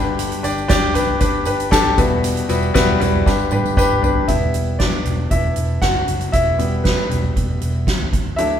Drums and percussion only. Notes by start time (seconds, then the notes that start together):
0.19 closed hi-hat, tambourine
0.32 closed hi-hat
0.44 closed hi-hat, tambourine
0.58 tambourine
0.69 kick, snare, closed hi-hat, tambourine
0.95 closed hi-hat, floor tom, tambourine
1.08 floor tom
1.20 kick, closed hi-hat, tambourine
1.45 closed hi-hat, tambourine
1.60 closed hi-hat, tambourine
1.72 kick, snare, closed hi-hat, tambourine
1.85 floor tom
1.98 kick, closed hi-hat, floor tom, tambourine
2.24 closed hi-hat, tambourine
2.37 closed hi-hat
2.49 closed hi-hat, tambourine
2.63 tambourine
2.75 kick, snare, closed hi-hat, tambourine
3.01 closed hi-hat, floor tom, tambourine
3.14 floor tom
3.26 kick, snare, tambourine
3.39 tambourine
3.51 high tom, tambourine
3.64 high tom, tambourine
3.77 kick, mid tom, tambourine
4.03 floor tom, tambourine
4.15 floor tom
4.28 kick, closed hi-hat
4.54 closed hi-hat
4.80 kick, snare, closed hi-hat
5.05 closed hi-hat, floor tom
5.31 kick, closed hi-hat
5.56 closed hi-hat
5.82 kick, snare, closed hi-hat
5.95 floor tom
6.08 closed hi-hat, floor tom
6.21 closed hi-hat
6.33 kick, closed hi-hat
6.59 closed hi-hat
6.85 kick, snare, closed hi-hat
7.11 closed hi-hat, floor tom
7.24 floor tom
7.36 kick, closed hi-hat
7.62 closed hi-hat
7.87 kick, snare, closed hi-hat
8.00 floor tom
8.13 kick, closed hi-hat, floor tom
8.38 closed hi-hat